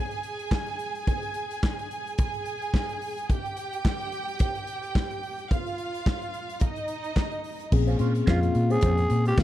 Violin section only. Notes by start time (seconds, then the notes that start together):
Already playing: G#4 G#5
2.19 G#4 G#5
3.30 G4 G5
5.51 F4 F5
6.61 D#4 D#5